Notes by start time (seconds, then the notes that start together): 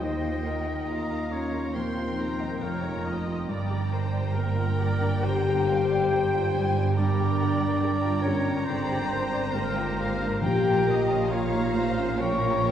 Already playing: D#2 F3 D#4 F4 A#4 D#5 F5 A#5
0.01 D#2 D#3 D#4 C5 D#5 G5
0.23 D#4 F4
0.45 A#4
0.66 D#5
0.88 F4 A#4 F5 A#5
1.10 D#4 A#5
1.30 C#4 F4 C#5 D#5 A#5
1.53 D#4 F4
1.74 A#2 F3 C4 C5 G5 C6
1.95 D#4 F4
2.18 A#4 A#5
2.39 D#5
2.61 F1 F2 A#3 F4 A#4 C#5 F5 A#5
2.83 D#4 A#5
3.04 F4 D#5
3.26 D#4 F4
3.47 G1 G2 D5 G5 A#5
3.69 G3 G4
3.91 D4 A#4 C5
4.12 D5
4.32 A#3 G4 A#4 G5 A#5
4.37 A#4
4.56 F4
4.79 G4 D5
5.01 D4 A#4
5.23 D3 G4 C5 G5 A#5
5.47 G3 G4
5.68 D4 A#4 F5
5.90 D5
6.10 G4 G5 A#5
6.35 F4
6.53 G3 G#5
6.76 D4 A#4
6.95 G2 D4 D5 G5 A#5
6.99 A#4
7.18 G3 G4
7.39 D4 A#4
7.60 G4 D5
7.80 G4 A#4 G5 A#5
8.04 F4
8.22 C#4 G4 C#5
8.26 G4
8.44 D4 A#4
8.64 D3 C4 C5 D5 G5
8.69 D3
8.88 G3 G4
9.09 D4 A#4 C5
9.31 G4 D5
9.51 G#1 G#2 A#3 G4 A#4 G5 A#5
9.75 F4 D5
9.97 G4 F5
10.22 D4
10.41 A#1 A#2 G4 A#4 F5 G5 A#5
10.65 F3 F4
10.87 A#4 D#5
11.08 F4 C#5
11.28 F4 C#5 F5 A#5
11.51 D#4 C#5
11.74 F4 C5
11.98 C#4 A#4
12.19 F3 A#3 A#4 C#5 G5 A#5 C#6
12.42 F3 F4
12.63 A#4